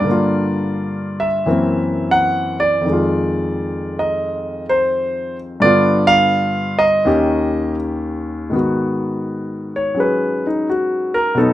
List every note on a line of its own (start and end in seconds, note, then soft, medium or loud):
0.00 1.44 G2 medium
0.00 1.27 D5 medium
0.04 1.46 D3 medium
0.04 1.46 A#3 medium
0.11 1.49 F4 medium
1.20 2.09 E5 medium
1.46 2.84 F#2 medium
1.46 2.84 E3 medium
1.46 2.85 A#3 soft
1.46 2.85 C4 medium
2.11 2.58 F#5 medium
2.60 3.95 D5 medium
2.81 5.61 F2 medium
2.81 5.62 D#3 soft
2.89 5.64 G#3 medium
2.93 5.64 F4 medium
3.99 4.65 D#5 medium
4.69 5.36 C5 medium
5.60 7.04 G2 medium
5.60 7.05 D3 medium
5.60 7.06 B3 medium
5.60 6.12 D5 loud
5.65 7.07 F4 medium
6.07 6.83 F5 loud
6.79 7.74 D#5 medium
7.05 8.54 D#2 medium
7.05 8.50 D#3 medium
7.05 8.54 C#4 medium
7.05 8.55 G4 medium
8.50 11.34 G#2 medium
8.50 11.35 D#3 soft
8.50 11.36 B3 soft
8.55 10.68 F#4 medium
9.76 9.97 C#5 medium
9.95 11.35 F#3 soft
9.95 11.36 C#4 soft
9.95 11.37 G#4 soft
10.00 10.45 B4 medium
10.47 10.67 D#4 medium
10.70 11.15 F#4 medium
11.14 11.35 A#4 medium
11.35 11.53 B2 medium
11.35 11.53 F#3 soft
11.35 11.53 B3 medium
11.35 11.53 A4 medium
11.39 11.53 D#4 medium